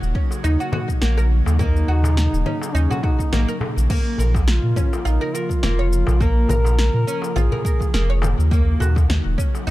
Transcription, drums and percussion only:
0.03 shaker
0.15 kick
0.31 darbuka tek, shaker
0.43 darbuka ka, shaker
0.61 shaker
0.72 darbuka ka, darbuka dum, low conga
0.89 kick, shaker
1.02 snare, shaker
1.19 shaker
1.46 darbuka tek, shaker
1.59 kick, low conga, shaker
1.76 shaker
1.88 darbuka ka
2.04 darbuka ka, darbuka tek, darbuka dum, shaker
2.17 snare, shaker
2.34 shaker
2.46 low conga
2.62 darbuka tek, shaker
2.76 shaker
2.91 darbuka dum, shaker
3.03 kick, darbuka tek
3.19 kick, darbuka tek, shaker
3.33 snare, low conga, shaker
3.49 shaker
3.61 darbuka ka, darbuka tek, darbuka dum
3.78 shaker
3.90 kick, crash, low conga, shaker
4.18 darbuka dum, shaker
4.34 kick, darbuka tek, shaker
4.48 snare, shaker
4.76 kick, low conga, shaker
4.93 darbuka tek, shaker
5.05 darbuka ka, shaker
5.34 darbuka ka, shaker
5.50 kick, shaker
5.63 snare, low conga, shaker
5.93 shaker
6.07 darbuka tek, darbuka dum, shaker
6.21 kick, shaker
6.48 darbuka ka, darbuka dum, low conga, shaker
6.64 darbuka ka, darbuka tek, shaker
6.79 snare, shaker
7.08 shaker
7.22 darbuka tek, shaker
7.37 low conga, shaker
7.52 darbuka dum
7.65 kick, shaker
7.80 kick, darbuka tek, shaker
7.94 snare, shaker
8.22 darbuka ka, darbuka tek, low conga, shaker
8.40 shaker
8.51 kick, shaker
8.80 darbuka dum, shaker
8.96 kick, darbuka tek, shaker
9.10 snare, low conga, shaker
9.38 kick, shaker
9.55 darbuka tek, shaker

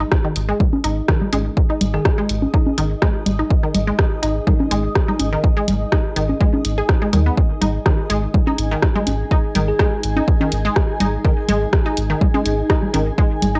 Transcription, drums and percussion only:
0.12 kick, cross-stick
0.36 closed hi-hat
0.60 kick, low conga
0.73 high conga
0.84 closed hi-hat
1.08 kick, cross-stick
1.21 low conga
1.33 closed hi-hat, high conga
1.57 kick
1.81 closed hi-hat, low conga
2.05 kick, cross-stick
2.29 closed hi-hat
2.42 high conga
2.54 kick
2.66 high conga
2.78 closed hi-hat
3.02 kick, cross-stick
3.26 closed hi-hat, low conga
3.50 kick
3.74 closed hi-hat, low conga
3.99 kick, cross-stick
4.23 closed hi-hat
4.47 kick, low conga
4.60 high conga
4.71 closed hi-hat
4.95 kick, cross-stick
5.08 low conga
5.19 closed hi-hat, high conga
5.44 kick
5.68 closed hi-hat, low conga
5.92 kick, cross-stick
6.16 closed hi-hat
6.29 high conga
6.41 kick
6.53 high conga
6.65 closed hi-hat
6.89 kick, cross-stick
7.13 closed hi-hat, low conga
7.37 kick
7.61 closed hi-hat, low conga
7.86 kick, cross-stick
8.10 closed hi-hat
8.34 kick, low conga
8.47 high conga
8.58 closed hi-hat
8.82 kick, cross-stick
8.95 low conga
9.07 closed hi-hat, high conga
9.31 kick
9.55 closed hi-hat, low conga
9.79 kick, cross-stick
10.03 closed hi-hat
10.16 high conga
10.28 kick
10.41 high conga
10.52 closed hi-hat
10.76 kick, cross-stick
11.00 closed hi-hat, low conga
11.25 kick
11.49 closed hi-hat, low conga
11.73 kick, cross-stick
11.97 closed hi-hat
12.21 kick, low conga
12.34 high conga
12.46 closed hi-hat
12.70 kick, cross-stick
12.83 low conga
12.94 closed hi-hat, high conga
13.18 kick
13.42 closed hi-hat, low conga

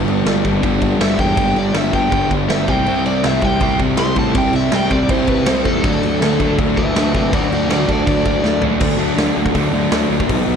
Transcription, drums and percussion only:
0.08 crash
0.26 snare, crash
0.45 kick, crash
0.63 kick, crash
0.82 kick, crash
1.01 snare, crash
1.19 kick, crash
1.37 kick, crash
1.56 crash
1.74 snare, crash
1.93 kick, crash
2.12 kick, crash
2.31 kick, crash
2.50 snare, crash
2.68 kick, crash
2.86 crash
3.06 crash
3.24 snare, crash
3.41 kick, crash
3.60 kick, crash
3.79 kick, crash
3.97 snare, crash
4.16 kick, crash
4.35 kick, crash
4.53 crash
4.72 snare, crash
4.90 kick, crash
5.09 kick, crash
5.27 kick, crash
5.46 snare, crash
5.65 kick, crash
5.84 kick, crash
6.03 crash
6.22 snare, crash
6.40 kick, crash
6.59 kick, crash
6.77 kick, crash
6.96 snare, crash
7.15 kick, crash
7.33 kick, crash
7.52 crash
7.70 snare, crash
7.89 kick, crash
8.07 kick, crash
8.25 kick, crash
8.44 snare
8.62 floor tom
8.80 kick, crash
9.18 snare, open hi-hat
9.46 kick
9.54 kick, open hi-hat
9.91 snare, open hi-hat
10.20 kick
10.29 kick, open hi-hat

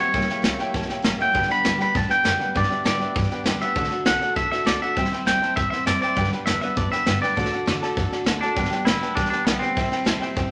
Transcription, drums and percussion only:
0.14 kick, snare
0.21 snare
0.29 snare
0.44 snare, hi-hat pedal
0.59 snare
0.74 kick, snare
0.82 snare
0.89 snare
1.04 snare, hi-hat pedal
1.20 snare
1.35 kick, snare
1.42 snare
1.50 snare
1.65 snare, hi-hat pedal
1.80 snare
1.95 kick, snare
2.02 snare
2.10 snare
2.25 snare, hi-hat pedal
2.40 snare
2.55 kick, snare
2.63 snare
2.71 snare
2.85 snare, hi-hat pedal
3.01 snare
3.16 kick, snare
3.23 snare
3.30 snare
3.46 snare, hi-hat pedal
3.61 snare
3.75 kick, snare
3.84 snare
3.91 snare
4.06 snare, hi-hat pedal
4.21 snare
4.36 kick, snare
4.52 snare
4.67 snare, hi-hat pedal
4.82 snare
4.97 kick, snare
5.05 snare
5.12 snare
5.27 snare, hi-hat pedal
5.42 snare
5.57 kick, snare
5.72 snare
5.87 snare, hi-hat pedal
6.02 snare
6.16 kick, snare
6.24 snare
6.32 snare
6.47 snare, hi-hat pedal
6.62 snare
6.77 kick, snare
6.92 snare
7.07 snare, hi-hat pedal
7.23 snare
7.37 kick, snare
7.45 snare
7.53 snare
7.67 snare, hi-hat pedal
7.83 snare
7.97 kick, snare
8.12 snare
8.26 snare, hi-hat pedal
8.42 snare
8.56 kick, snare
8.65 snare
8.72 snare
8.87 snare, hi-hat pedal
9.02 snare
9.17 kick, snare
9.25 snare
9.32 snare
9.47 snare, hi-hat pedal
9.62 snare
9.77 kick, snare
9.84 snare
9.92 snare
10.06 snare, hi-hat pedal
10.22 snare
10.37 kick, snare

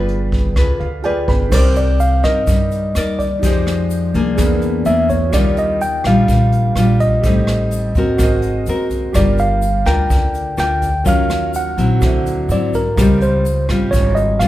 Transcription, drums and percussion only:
0.08 closed hi-hat
0.32 kick, closed hi-hat
0.56 kick, cross-stick, closed hi-hat
0.80 closed hi-hat
1.04 closed hi-hat
1.28 kick, closed hi-hat
1.52 kick, cross-stick, crash, shaker
1.76 closed hi-hat, shaker
2.00 closed hi-hat, shaker
2.24 kick, cross-stick, closed hi-hat, shaker
2.47 kick, closed hi-hat, shaker
2.71 closed hi-hat, shaker
2.95 cross-stick, closed hi-hat, shaker
3.19 kick, closed hi-hat, shaker
3.43 kick, closed hi-hat, shaker
3.67 cross-stick, closed hi-hat, shaker
3.90 closed hi-hat, shaker
4.14 kick, closed hi-hat, shaker
4.38 kick, cross-stick, closed hi-hat, shaker
4.62 closed hi-hat, shaker
4.85 closed hi-hat, shaker
5.09 kick, closed hi-hat, shaker
5.33 kick, cross-stick, closed hi-hat, shaker
5.57 closed hi-hat, shaker
5.81 closed hi-hat, shaker
6.04 kick, cross-stick, closed hi-hat, shaker
6.28 kick, closed hi-hat, shaker
6.52 closed hi-hat, shaker
6.76 cross-stick, closed hi-hat, shaker
7.00 kick, closed hi-hat, shaker
7.23 kick, closed hi-hat, shaker
7.47 cross-stick, closed hi-hat, shaker
7.71 closed hi-hat, shaker
7.95 kick, closed hi-hat, shaker
8.18 kick, cross-stick, closed hi-hat, shaker
8.42 closed hi-hat, shaker
8.66 closed hi-hat, shaker
8.90 kick, closed hi-hat, shaker
9.14 kick, cross-stick, closed hi-hat, shaker
9.38 closed hi-hat, shaker
9.62 closed hi-hat, shaker
9.86 kick, cross-stick, closed hi-hat, shaker
10.10 kick, closed hi-hat, shaker
10.35 closed hi-hat, shaker
10.58 cross-stick, closed hi-hat, shaker
10.82 kick, closed hi-hat, shaker
11.06 kick, closed hi-hat, shaker
11.30 cross-stick, closed hi-hat, shaker
11.54 closed hi-hat, shaker
11.78 kick, closed hi-hat, shaker
12.02 kick, cross-stick, closed hi-hat, shaker
12.26 closed hi-hat, shaker
12.49 closed hi-hat, shaker
12.74 kick, closed hi-hat, shaker
12.97 kick, cross-stick, closed hi-hat, shaker
13.21 closed hi-hat, shaker
13.45 closed hi-hat, shaker
13.69 kick, cross-stick, closed hi-hat, shaker
13.93 kick, closed hi-hat, shaker
14.16 closed hi-hat, shaker
14.40 cross-stick, closed hi-hat, shaker

